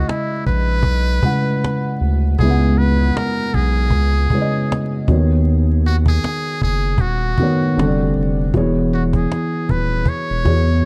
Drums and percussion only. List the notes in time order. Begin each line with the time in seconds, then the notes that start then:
0.09 cajon slap
0.46 cajon bass
0.68 cajon slap
0.83 cajon bass
1.23 cajon bass
1.47 cajon slap
1.64 cajon slap
2.00 cajon slap
2.24 cajon slap
2.39 cajon bass
2.78 cajon slap
3.17 cajon slap
3.54 cajon bass
3.90 cajon bass
4.30 cajon bass
4.54 cajon slap
4.72 cajon slap
5.08 cajon bass
5.32 cajon slap
5.47 cajon slap
6.06 cajon bass
6.24 cajon slap
6.62 cajon bass
6.83 cajon slap
6.98 cajon bass
7.38 cajon bass
7.62 cajon slap
7.79 cajon slap
8.15 cajon slap
8.39 cajon slap
8.54 cajon bass
8.76 cajon slap
8.93 cajon slap
9.13 cajon bass
9.32 cajon slap
9.69 cajon bass
9.91 cajon slap
10.06 cajon bass
10.45 cajon bass